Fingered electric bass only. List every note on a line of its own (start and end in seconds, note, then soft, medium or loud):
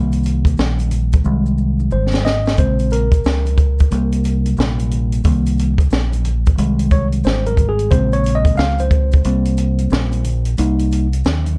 0.00 0.55 C2 loud
0.59 1.22 A#1 medium
1.25 1.88 C2 loud
1.92 2.55 G#1 loud
2.58 3.22 A#1 medium
3.25 3.88 C#2 medium
3.92 4.55 C2 loud
4.58 5.22 A#1 medium
5.25 5.88 C2 loud
5.92 6.55 A#1 medium
6.59 7.22 C2 loud
7.25 7.88 G#1 medium
7.92 8.55 A#1 loud
8.58 9.22 C#2 medium
9.25 9.88 C2 loud
9.92 10.55 A#1 loud
10.59 11.22 C2 loud
11.25 11.58 D#2 medium